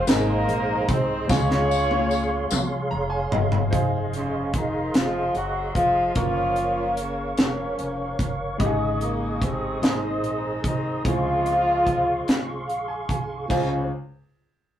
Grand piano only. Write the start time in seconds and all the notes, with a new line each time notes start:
0.07 G#2 G#3 C4 D#4 G#4 C5
1.27 C#3 G#3 C#4 F4 G#4
2.91 A#5
3.10 G#5
3.32 D#5
3.71 D#4 G#4 C5 F5
6.15 A#3 C#4 F4 A#4
8.58 G#2 C#3 G#3 D#4 G4
8.66 G#4
9.82 G#2 G#3 A#3 D#4 G#4
9.89 C4
11.04 C#3 G#3 C4 E4 G#4
11.11 F4
12.68 F5
12.88 G#5
13.09 G#5
13.50 C#2 C#4 F4 G#4 C5